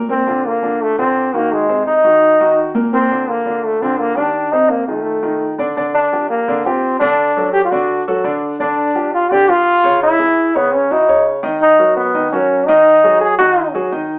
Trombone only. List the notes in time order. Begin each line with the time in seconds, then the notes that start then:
0.10 C4
0.46 A#3
0.82 A3
0.99 C4
1.35 A#3
1.52 G#3
1.87 D#4
2.93 C4
3.29 A#3
3.65 A3
3.82 C4
3.99 A#3
4.17 D4
4.52 D#4
4.70 A#3
4.88 A3
5.94 D4
6.30 A#3
6.65 C4
6.99 D4
7.53 G4
7.65 F4
7.70 F#4
8.60 D4
9.14 F4
9.32 G4
9.49 F4
10.03 E4
10.56 B3
10.74 C#4
10.92 D#4
11.62 D#4
11.97 B3
12.32 C#4
12.66 D#4
13.21 G#4
13.38 F#4